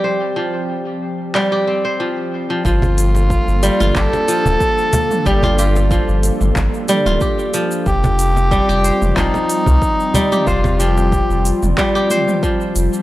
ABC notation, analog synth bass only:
X:1
M:4/4
L:1/16
Q:"Swing 16ths" 1/4=92
K:Gm
V:1 name="Analog synth bass" clef=bass
z16 | G,,,4 z G,,, z G,,, G,,, z2 D,,, z4 | G,,,4 z G,,, z G,,, G,,, z2 D,,, z4 | F,,,4 z F,,, z F,,, F,,, z2 C,, z4 |
F,,,4 z F,,, z F,,, z6 F,,, z |]